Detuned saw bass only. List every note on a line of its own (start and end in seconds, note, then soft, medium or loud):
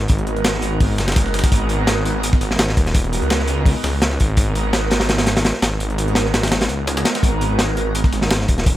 0.10 0.62 G#1 loud
0.62 1.00 G#1 loud
0.98 1.42 F#1 medium
1.52 2.31 G#1 loud
2.41 2.57 G#1 medium
2.59 2.75 G#1 medium
2.77 3.21 D#1 medium
3.22 3.74 C#2 loud
3.84 4.18 C#2 loud
4.20 5.53 G#1 medium
5.62 5.79 G#1 medium
5.80 6.32 G#1 loud
6.34 6.69 G#1 loud
6.70 7.04 C#2 medium
7.23 8.03 G#1 loud
8.13 8.29 G#1 medium
8.30 8.47 G#1 medium
8.49 8.77 D#1 medium